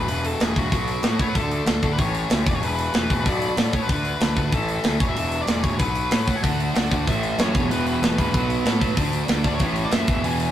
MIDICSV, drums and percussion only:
0, 0, Header, 1, 2, 480
1, 0, Start_track
1, 0, Key_signature, 2, "major"
1, 0, Tempo, 317628
1, 119, Time_signature, 4, 2, 24, 8
1, 15889, End_track
2, 0, Start_track
2, 0, Title_t, "Drums"
2, 127, Note_on_c, 9, 46, 78
2, 278, Note_off_c, 9, 46, 0
2, 371, Note_on_c, 9, 46, 60
2, 522, Note_off_c, 9, 46, 0
2, 608, Note_on_c, 9, 46, 72
2, 623, Note_on_c, 9, 38, 103
2, 759, Note_off_c, 9, 46, 0
2, 774, Note_off_c, 9, 38, 0
2, 849, Note_on_c, 9, 46, 53
2, 850, Note_on_c, 9, 36, 81
2, 1001, Note_off_c, 9, 36, 0
2, 1001, Note_off_c, 9, 46, 0
2, 1089, Note_on_c, 9, 36, 86
2, 1091, Note_on_c, 9, 46, 64
2, 1240, Note_off_c, 9, 36, 0
2, 1242, Note_off_c, 9, 46, 0
2, 1324, Note_on_c, 9, 46, 55
2, 1475, Note_off_c, 9, 46, 0
2, 1556, Note_on_c, 9, 46, 70
2, 1571, Note_on_c, 9, 38, 109
2, 1707, Note_off_c, 9, 46, 0
2, 1722, Note_off_c, 9, 38, 0
2, 1803, Note_on_c, 9, 46, 55
2, 1806, Note_on_c, 9, 36, 85
2, 1954, Note_off_c, 9, 46, 0
2, 1957, Note_off_c, 9, 36, 0
2, 2044, Note_on_c, 9, 36, 93
2, 2044, Note_on_c, 9, 46, 77
2, 2195, Note_off_c, 9, 36, 0
2, 2195, Note_off_c, 9, 46, 0
2, 2287, Note_on_c, 9, 46, 55
2, 2438, Note_off_c, 9, 46, 0
2, 2516, Note_on_c, 9, 46, 66
2, 2531, Note_on_c, 9, 38, 110
2, 2667, Note_off_c, 9, 46, 0
2, 2682, Note_off_c, 9, 38, 0
2, 2761, Note_on_c, 9, 46, 53
2, 2762, Note_on_c, 9, 36, 81
2, 2912, Note_off_c, 9, 46, 0
2, 2913, Note_off_c, 9, 36, 0
2, 2998, Note_on_c, 9, 46, 67
2, 3003, Note_on_c, 9, 36, 85
2, 3149, Note_off_c, 9, 46, 0
2, 3154, Note_off_c, 9, 36, 0
2, 3241, Note_on_c, 9, 46, 54
2, 3392, Note_off_c, 9, 46, 0
2, 3476, Note_on_c, 9, 46, 70
2, 3491, Note_on_c, 9, 38, 118
2, 3627, Note_off_c, 9, 46, 0
2, 3643, Note_off_c, 9, 38, 0
2, 3725, Note_on_c, 9, 36, 103
2, 3731, Note_on_c, 9, 46, 65
2, 3876, Note_off_c, 9, 36, 0
2, 3882, Note_off_c, 9, 46, 0
2, 3973, Note_on_c, 9, 46, 80
2, 4125, Note_off_c, 9, 46, 0
2, 4210, Note_on_c, 9, 46, 59
2, 4361, Note_off_c, 9, 46, 0
2, 4441, Note_on_c, 9, 46, 70
2, 4456, Note_on_c, 9, 38, 108
2, 4592, Note_off_c, 9, 46, 0
2, 4607, Note_off_c, 9, 38, 0
2, 4687, Note_on_c, 9, 36, 80
2, 4688, Note_on_c, 9, 46, 58
2, 4838, Note_off_c, 9, 36, 0
2, 4839, Note_off_c, 9, 46, 0
2, 4924, Note_on_c, 9, 36, 86
2, 4924, Note_on_c, 9, 46, 70
2, 5075, Note_off_c, 9, 36, 0
2, 5075, Note_off_c, 9, 46, 0
2, 5164, Note_on_c, 9, 46, 55
2, 5315, Note_off_c, 9, 46, 0
2, 5399, Note_on_c, 9, 46, 75
2, 5414, Note_on_c, 9, 38, 105
2, 5550, Note_off_c, 9, 46, 0
2, 5565, Note_off_c, 9, 38, 0
2, 5634, Note_on_c, 9, 46, 59
2, 5642, Note_on_c, 9, 36, 83
2, 5785, Note_off_c, 9, 46, 0
2, 5793, Note_off_c, 9, 36, 0
2, 5881, Note_on_c, 9, 46, 79
2, 5883, Note_on_c, 9, 36, 96
2, 6033, Note_off_c, 9, 46, 0
2, 6034, Note_off_c, 9, 36, 0
2, 6116, Note_on_c, 9, 46, 53
2, 6267, Note_off_c, 9, 46, 0
2, 6356, Note_on_c, 9, 46, 67
2, 6371, Note_on_c, 9, 38, 97
2, 6507, Note_off_c, 9, 46, 0
2, 6522, Note_off_c, 9, 38, 0
2, 6595, Note_on_c, 9, 46, 49
2, 6598, Note_on_c, 9, 36, 78
2, 6746, Note_off_c, 9, 46, 0
2, 6749, Note_off_c, 9, 36, 0
2, 6834, Note_on_c, 9, 46, 60
2, 6838, Note_on_c, 9, 36, 81
2, 6986, Note_off_c, 9, 46, 0
2, 6989, Note_off_c, 9, 36, 0
2, 7081, Note_on_c, 9, 46, 51
2, 7232, Note_off_c, 9, 46, 0
2, 7311, Note_on_c, 9, 46, 77
2, 7326, Note_on_c, 9, 38, 111
2, 7462, Note_off_c, 9, 46, 0
2, 7477, Note_off_c, 9, 38, 0
2, 7561, Note_on_c, 9, 36, 113
2, 7562, Note_on_c, 9, 46, 57
2, 7712, Note_off_c, 9, 36, 0
2, 7713, Note_off_c, 9, 46, 0
2, 7807, Note_on_c, 9, 46, 85
2, 7958, Note_off_c, 9, 46, 0
2, 8034, Note_on_c, 9, 46, 56
2, 8186, Note_off_c, 9, 46, 0
2, 8273, Note_on_c, 9, 46, 73
2, 8288, Note_on_c, 9, 38, 104
2, 8424, Note_off_c, 9, 46, 0
2, 8439, Note_off_c, 9, 38, 0
2, 8519, Note_on_c, 9, 46, 50
2, 8520, Note_on_c, 9, 36, 79
2, 8670, Note_off_c, 9, 46, 0
2, 8671, Note_off_c, 9, 36, 0
2, 8754, Note_on_c, 9, 46, 80
2, 8760, Note_on_c, 9, 36, 86
2, 8906, Note_off_c, 9, 46, 0
2, 8911, Note_off_c, 9, 36, 0
2, 8997, Note_on_c, 9, 46, 58
2, 9148, Note_off_c, 9, 46, 0
2, 9235, Note_on_c, 9, 46, 78
2, 9250, Note_on_c, 9, 38, 110
2, 9386, Note_off_c, 9, 46, 0
2, 9401, Note_off_c, 9, 38, 0
2, 9478, Note_on_c, 9, 46, 62
2, 9484, Note_on_c, 9, 36, 84
2, 9629, Note_off_c, 9, 46, 0
2, 9635, Note_off_c, 9, 36, 0
2, 9728, Note_on_c, 9, 36, 93
2, 9735, Note_on_c, 9, 46, 80
2, 9879, Note_off_c, 9, 36, 0
2, 9886, Note_off_c, 9, 46, 0
2, 9977, Note_on_c, 9, 46, 55
2, 10128, Note_off_c, 9, 46, 0
2, 10208, Note_on_c, 9, 46, 74
2, 10223, Note_on_c, 9, 38, 112
2, 10359, Note_off_c, 9, 46, 0
2, 10374, Note_off_c, 9, 38, 0
2, 10450, Note_on_c, 9, 36, 86
2, 10450, Note_on_c, 9, 46, 52
2, 10601, Note_off_c, 9, 36, 0
2, 10602, Note_off_c, 9, 46, 0
2, 10691, Note_on_c, 9, 36, 86
2, 10695, Note_on_c, 9, 46, 71
2, 10842, Note_off_c, 9, 36, 0
2, 10846, Note_off_c, 9, 46, 0
2, 10929, Note_on_c, 9, 46, 52
2, 11081, Note_off_c, 9, 46, 0
2, 11163, Note_on_c, 9, 46, 69
2, 11178, Note_on_c, 9, 38, 109
2, 11314, Note_off_c, 9, 46, 0
2, 11329, Note_off_c, 9, 38, 0
2, 11403, Note_on_c, 9, 46, 56
2, 11408, Note_on_c, 9, 36, 104
2, 11554, Note_off_c, 9, 46, 0
2, 11559, Note_off_c, 9, 36, 0
2, 11655, Note_on_c, 9, 46, 77
2, 11806, Note_off_c, 9, 46, 0
2, 11886, Note_on_c, 9, 46, 54
2, 12037, Note_off_c, 9, 46, 0
2, 12133, Note_on_c, 9, 46, 66
2, 12148, Note_on_c, 9, 38, 110
2, 12284, Note_off_c, 9, 46, 0
2, 12299, Note_off_c, 9, 38, 0
2, 12368, Note_on_c, 9, 36, 74
2, 12373, Note_on_c, 9, 46, 60
2, 12519, Note_off_c, 9, 36, 0
2, 12524, Note_off_c, 9, 46, 0
2, 12606, Note_on_c, 9, 36, 91
2, 12607, Note_on_c, 9, 46, 69
2, 12757, Note_off_c, 9, 36, 0
2, 12758, Note_off_c, 9, 46, 0
2, 12845, Note_on_c, 9, 46, 55
2, 12996, Note_off_c, 9, 46, 0
2, 13082, Note_on_c, 9, 46, 74
2, 13097, Note_on_c, 9, 38, 104
2, 13233, Note_off_c, 9, 46, 0
2, 13248, Note_off_c, 9, 38, 0
2, 13321, Note_on_c, 9, 36, 88
2, 13324, Note_on_c, 9, 46, 55
2, 13472, Note_off_c, 9, 36, 0
2, 13476, Note_off_c, 9, 46, 0
2, 13556, Note_on_c, 9, 46, 86
2, 13558, Note_on_c, 9, 36, 91
2, 13707, Note_off_c, 9, 46, 0
2, 13709, Note_off_c, 9, 36, 0
2, 13798, Note_on_c, 9, 46, 59
2, 13949, Note_off_c, 9, 46, 0
2, 14029, Note_on_c, 9, 46, 71
2, 14044, Note_on_c, 9, 38, 110
2, 14180, Note_off_c, 9, 46, 0
2, 14195, Note_off_c, 9, 38, 0
2, 14270, Note_on_c, 9, 46, 52
2, 14271, Note_on_c, 9, 36, 90
2, 14421, Note_off_c, 9, 46, 0
2, 14423, Note_off_c, 9, 36, 0
2, 14499, Note_on_c, 9, 46, 65
2, 14509, Note_on_c, 9, 36, 93
2, 14650, Note_off_c, 9, 46, 0
2, 14660, Note_off_c, 9, 36, 0
2, 14746, Note_on_c, 9, 46, 57
2, 14897, Note_off_c, 9, 46, 0
2, 14984, Note_on_c, 9, 46, 75
2, 14999, Note_on_c, 9, 38, 107
2, 15135, Note_off_c, 9, 46, 0
2, 15151, Note_off_c, 9, 38, 0
2, 15227, Note_on_c, 9, 46, 53
2, 15234, Note_on_c, 9, 36, 118
2, 15378, Note_off_c, 9, 46, 0
2, 15385, Note_off_c, 9, 36, 0
2, 15479, Note_on_c, 9, 46, 80
2, 15630, Note_off_c, 9, 46, 0
2, 15715, Note_on_c, 9, 46, 56
2, 15866, Note_off_c, 9, 46, 0
2, 15889, End_track
0, 0, End_of_file